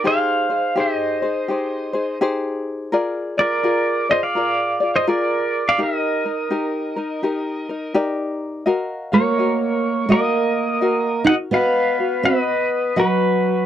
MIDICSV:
0, 0, Header, 1, 4, 480
1, 0, Start_track
1, 0, Key_signature, -3, "major"
1, 0, Tempo, 718563
1, 27, Time_signature, 4, 2, 24, 8
1, 5788, Key_signature, -6, "minor"
1, 9124, End_track
2, 0, Start_track
2, 0, Title_t, "Pedal steel guitar"
2, 0, Program_c, 0, 26
2, 45, Note_on_c, 0, 72, 66
2, 49, Note_on_c, 0, 77, 92
2, 490, Note_off_c, 0, 72, 0
2, 531, Note_off_c, 0, 77, 0
2, 535, Note_on_c, 0, 75, 67
2, 540, Note_on_c, 0, 72, 50
2, 1454, Note_off_c, 0, 75, 0
2, 1457, Note_off_c, 0, 72, 0
2, 2265, Note_on_c, 0, 74, 88
2, 2275, Note_on_c, 0, 70, 63
2, 2715, Note_off_c, 0, 70, 0
2, 2742, Note_off_c, 0, 74, 0
2, 2745, Note_on_c, 0, 75, 83
2, 2752, Note_on_c, 0, 72, 60
2, 2825, Note_off_c, 0, 72, 0
2, 2826, Note_on_c, 0, 77, 95
2, 2828, Note_off_c, 0, 75, 0
2, 2830, Note_on_c, 0, 74, 74
2, 3278, Note_off_c, 0, 74, 0
2, 3311, Note_on_c, 0, 72, 67
2, 3315, Note_on_c, 0, 75, 81
2, 3316, Note_off_c, 0, 77, 0
2, 3388, Note_off_c, 0, 72, 0
2, 3397, Note_off_c, 0, 75, 0
2, 3400, Note_on_c, 0, 74, 88
2, 3405, Note_on_c, 0, 70, 67
2, 3760, Note_off_c, 0, 70, 0
2, 3792, Note_off_c, 0, 74, 0
2, 3799, Note_on_c, 0, 74, 64
2, 3799, Note_on_c, 0, 77, 85
2, 3873, Note_off_c, 0, 74, 0
2, 3880, Note_off_c, 0, 77, 0
2, 3895, Note_on_c, 0, 75, 84
2, 3901, Note_on_c, 0, 70, 66
2, 5297, Note_off_c, 0, 70, 0
2, 5321, Note_off_c, 0, 75, 0
2, 6105, Note_on_c, 0, 73, 82
2, 6111, Note_on_c, 0, 70, 60
2, 6731, Note_off_c, 0, 70, 0
2, 6760, Note_on_c, 0, 75, 81
2, 6767, Note_off_c, 0, 73, 0
2, 6770, Note_on_c, 0, 70, 64
2, 7512, Note_off_c, 0, 70, 0
2, 7528, Note_on_c, 0, 78, 105
2, 7533, Note_off_c, 0, 75, 0
2, 7541, Note_on_c, 0, 75, 81
2, 7576, Note_off_c, 0, 78, 0
2, 7588, Note_off_c, 0, 75, 0
2, 7709, Note_on_c, 0, 77, 103
2, 7721, Note_on_c, 0, 71, 80
2, 8166, Note_off_c, 0, 71, 0
2, 8183, Note_off_c, 0, 77, 0
2, 8186, Note_on_c, 0, 75, 84
2, 8207, Note_on_c, 0, 71, 66
2, 8649, Note_off_c, 0, 71, 0
2, 8679, Note_off_c, 0, 75, 0
2, 8681, Note_on_c, 0, 71, 67
2, 8692, Note_on_c, 0, 66, 52
2, 9124, Note_off_c, 0, 66, 0
2, 9124, Note_off_c, 0, 71, 0
2, 9124, End_track
3, 0, Start_track
3, 0, Title_t, "Ukulele"
3, 0, Program_c, 1, 24
3, 27, Note_on_c, 1, 67, 67
3, 30, Note_on_c, 1, 63, 72
3, 34, Note_on_c, 1, 68, 86
3, 35, Note_on_c, 1, 72, 74
3, 323, Note_off_c, 1, 72, 0
3, 328, Note_off_c, 1, 68, 0
3, 329, Note_off_c, 1, 67, 0
3, 330, Note_off_c, 1, 63, 0
3, 331, Note_on_c, 1, 72, 40
3, 336, Note_on_c, 1, 68, 39
3, 345, Note_on_c, 1, 63, 37
3, 504, Note_off_c, 1, 63, 0
3, 504, Note_on_c, 1, 67, 71
3, 507, Note_off_c, 1, 68, 0
3, 508, Note_off_c, 1, 72, 0
3, 512, Note_on_c, 1, 63, 63
3, 515, Note_on_c, 1, 68, 63
3, 516, Note_on_c, 1, 72, 70
3, 807, Note_off_c, 1, 72, 0
3, 808, Note_off_c, 1, 67, 0
3, 811, Note_off_c, 1, 63, 0
3, 813, Note_off_c, 1, 68, 0
3, 815, Note_on_c, 1, 72, 51
3, 820, Note_on_c, 1, 68, 41
3, 832, Note_on_c, 1, 63, 39
3, 989, Note_off_c, 1, 63, 0
3, 990, Note_on_c, 1, 67, 56
3, 991, Note_off_c, 1, 72, 0
3, 993, Note_off_c, 1, 68, 0
3, 997, Note_on_c, 1, 63, 54
3, 1002, Note_on_c, 1, 68, 55
3, 1007, Note_on_c, 1, 72, 53
3, 1283, Note_off_c, 1, 72, 0
3, 1290, Note_off_c, 1, 67, 0
3, 1291, Note_off_c, 1, 68, 0
3, 1291, Note_on_c, 1, 72, 56
3, 1294, Note_off_c, 1, 63, 0
3, 1299, Note_on_c, 1, 68, 55
3, 1304, Note_on_c, 1, 63, 46
3, 1468, Note_off_c, 1, 72, 0
3, 1470, Note_off_c, 1, 63, 0
3, 1472, Note_off_c, 1, 68, 0
3, 1476, Note_on_c, 1, 67, 88
3, 1478, Note_on_c, 1, 63, 85
3, 1481, Note_on_c, 1, 68, 93
3, 1486, Note_on_c, 1, 72, 89
3, 1949, Note_off_c, 1, 67, 0
3, 1952, Note_on_c, 1, 70, 80
3, 1953, Note_off_c, 1, 63, 0
3, 1957, Note_off_c, 1, 68, 0
3, 1957, Note_off_c, 1, 72, 0
3, 1957, Note_on_c, 1, 65, 89
3, 1960, Note_on_c, 1, 68, 88
3, 1961, Note_on_c, 1, 74, 78
3, 2246, Note_off_c, 1, 74, 0
3, 2251, Note_off_c, 1, 70, 0
3, 2253, Note_off_c, 1, 68, 0
3, 2254, Note_off_c, 1, 65, 0
3, 2254, Note_on_c, 1, 74, 41
3, 2261, Note_on_c, 1, 68, 39
3, 2267, Note_on_c, 1, 65, 37
3, 2423, Note_off_c, 1, 65, 0
3, 2424, Note_off_c, 1, 68, 0
3, 2427, Note_off_c, 1, 74, 0
3, 2427, Note_on_c, 1, 70, 67
3, 2431, Note_on_c, 1, 65, 72
3, 2432, Note_on_c, 1, 68, 71
3, 2435, Note_on_c, 1, 74, 68
3, 2726, Note_off_c, 1, 74, 0
3, 2729, Note_off_c, 1, 70, 0
3, 2731, Note_off_c, 1, 65, 0
3, 2732, Note_off_c, 1, 68, 0
3, 2734, Note_on_c, 1, 74, 50
3, 2739, Note_on_c, 1, 68, 48
3, 2747, Note_on_c, 1, 65, 41
3, 2905, Note_off_c, 1, 65, 0
3, 2906, Note_on_c, 1, 70, 51
3, 2909, Note_off_c, 1, 68, 0
3, 2910, Note_off_c, 1, 74, 0
3, 2913, Note_on_c, 1, 65, 56
3, 2917, Note_on_c, 1, 68, 60
3, 2921, Note_on_c, 1, 74, 62
3, 3200, Note_off_c, 1, 74, 0
3, 3208, Note_off_c, 1, 68, 0
3, 3208, Note_on_c, 1, 74, 52
3, 3209, Note_off_c, 1, 70, 0
3, 3212, Note_off_c, 1, 65, 0
3, 3216, Note_on_c, 1, 68, 43
3, 3225, Note_on_c, 1, 65, 39
3, 3382, Note_off_c, 1, 65, 0
3, 3387, Note_off_c, 1, 74, 0
3, 3388, Note_off_c, 1, 68, 0
3, 3389, Note_on_c, 1, 70, 80
3, 3390, Note_on_c, 1, 65, 83
3, 3396, Note_on_c, 1, 68, 83
3, 3397, Note_on_c, 1, 74, 79
3, 3859, Note_off_c, 1, 68, 0
3, 3862, Note_on_c, 1, 67, 62
3, 3863, Note_off_c, 1, 65, 0
3, 3866, Note_off_c, 1, 74, 0
3, 3866, Note_on_c, 1, 63, 81
3, 3869, Note_off_c, 1, 70, 0
3, 3869, Note_on_c, 1, 70, 73
3, 4166, Note_off_c, 1, 67, 0
3, 4168, Note_off_c, 1, 63, 0
3, 4170, Note_off_c, 1, 70, 0
3, 4178, Note_on_c, 1, 70, 43
3, 4182, Note_on_c, 1, 63, 37
3, 4338, Note_off_c, 1, 63, 0
3, 4344, Note_on_c, 1, 67, 66
3, 4345, Note_off_c, 1, 70, 0
3, 4346, Note_on_c, 1, 63, 70
3, 4353, Note_on_c, 1, 70, 76
3, 4644, Note_off_c, 1, 70, 0
3, 4648, Note_off_c, 1, 67, 0
3, 4649, Note_off_c, 1, 63, 0
3, 4652, Note_on_c, 1, 70, 51
3, 4659, Note_on_c, 1, 63, 43
3, 4825, Note_off_c, 1, 63, 0
3, 4828, Note_on_c, 1, 67, 61
3, 4829, Note_off_c, 1, 70, 0
3, 4833, Note_on_c, 1, 63, 68
3, 4837, Note_on_c, 1, 70, 65
3, 5130, Note_off_c, 1, 67, 0
3, 5130, Note_off_c, 1, 70, 0
3, 5132, Note_off_c, 1, 63, 0
3, 5138, Note_on_c, 1, 70, 48
3, 5146, Note_on_c, 1, 63, 48
3, 5302, Note_off_c, 1, 63, 0
3, 5302, Note_off_c, 1, 70, 0
3, 5307, Note_on_c, 1, 67, 87
3, 5310, Note_on_c, 1, 63, 84
3, 5310, Note_on_c, 1, 70, 89
3, 5312, Note_on_c, 1, 74, 91
3, 5781, Note_off_c, 1, 67, 0
3, 5783, Note_on_c, 1, 75, 75
3, 5786, Note_off_c, 1, 63, 0
3, 5787, Note_off_c, 1, 70, 0
3, 5789, Note_on_c, 1, 66, 79
3, 5789, Note_on_c, 1, 70, 85
3, 5790, Note_off_c, 1, 74, 0
3, 5793, Note_on_c, 1, 77, 79
3, 6084, Note_off_c, 1, 77, 0
3, 6087, Note_off_c, 1, 75, 0
3, 6090, Note_off_c, 1, 66, 0
3, 6090, Note_off_c, 1, 70, 0
3, 6092, Note_on_c, 1, 77, 38
3, 6097, Note_on_c, 1, 70, 38
3, 6104, Note_on_c, 1, 66, 37
3, 6265, Note_off_c, 1, 66, 0
3, 6266, Note_on_c, 1, 75, 45
3, 6268, Note_off_c, 1, 70, 0
3, 6268, Note_off_c, 1, 77, 0
3, 6273, Note_on_c, 1, 66, 50
3, 6276, Note_on_c, 1, 70, 53
3, 6278, Note_on_c, 1, 77, 58
3, 6743, Note_off_c, 1, 75, 0
3, 6745, Note_off_c, 1, 70, 0
3, 6745, Note_off_c, 1, 77, 0
3, 6745, Note_on_c, 1, 75, 75
3, 6746, Note_off_c, 1, 66, 0
3, 6749, Note_on_c, 1, 66, 72
3, 6753, Note_on_c, 1, 70, 72
3, 6753, Note_on_c, 1, 77, 72
3, 7218, Note_off_c, 1, 75, 0
3, 7221, Note_on_c, 1, 75, 62
3, 7222, Note_off_c, 1, 70, 0
3, 7223, Note_off_c, 1, 66, 0
3, 7226, Note_on_c, 1, 66, 68
3, 7227, Note_off_c, 1, 77, 0
3, 7230, Note_on_c, 1, 70, 65
3, 7235, Note_on_c, 1, 77, 65
3, 7520, Note_off_c, 1, 70, 0
3, 7525, Note_off_c, 1, 75, 0
3, 7527, Note_off_c, 1, 66, 0
3, 7528, Note_on_c, 1, 70, 48
3, 7532, Note_off_c, 1, 77, 0
3, 7536, Note_on_c, 1, 66, 44
3, 7692, Note_off_c, 1, 66, 0
3, 7700, Note_on_c, 1, 66, 69
3, 7700, Note_on_c, 1, 75, 73
3, 7703, Note_off_c, 1, 70, 0
3, 7705, Note_on_c, 1, 71, 85
3, 7996, Note_off_c, 1, 71, 0
3, 8004, Note_off_c, 1, 66, 0
3, 8004, Note_off_c, 1, 75, 0
3, 8004, Note_on_c, 1, 71, 37
3, 8014, Note_on_c, 1, 66, 36
3, 8176, Note_off_c, 1, 66, 0
3, 8178, Note_off_c, 1, 71, 0
3, 8178, Note_on_c, 1, 75, 52
3, 8184, Note_on_c, 1, 66, 53
3, 8186, Note_on_c, 1, 71, 54
3, 8192, Note_on_c, 1, 78, 55
3, 8654, Note_off_c, 1, 66, 0
3, 8659, Note_off_c, 1, 75, 0
3, 8659, Note_off_c, 1, 78, 0
3, 8662, Note_on_c, 1, 66, 77
3, 8662, Note_on_c, 1, 75, 70
3, 8666, Note_off_c, 1, 71, 0
3, 8667, Note_on_c, 1, 78, 87
3, 8669, Note_on_c, 1, 71, 77
3, 9124, Note_off_c, 1, 66, 0
3, 9124, Note_off_c, 1, 71, 0
3, 9124, Note_off_c, 1, 75, 0
3, 9124, Note_off_c, 1, 78, 0
3, 9124, End_track
4, 0, Start_track
4, 0, Title_t, "Steel-string acoustic guitar"
4, 0, Program_c, 2, 25
4, 6099, Note_on_c, 2, 58, 65
4, 6725, Note_off_c, 2, 58, 0
4, 6738, Note_on_c, 2, 58, 70
4, 7496, Note_off_c, 2, 58, 0
4, 7511, Note_on_c, 2, 63, 85
4, 7561, Note_off_c, 2, 63, 0
4, 7689, Note_on_c, 2, 59, 83
4, 8150, Note_off_c, 2, 59, 0
4, 8172, Note_on_c, 2, 59, 67
4, 8631, Note_off_c, 2, 59, 0
4, 8658, Note_on_c, 2, 54, 62
4, 9114, Note_off_c, 2, 54, 0
4, 9124, End_track
0, 0, End_of_file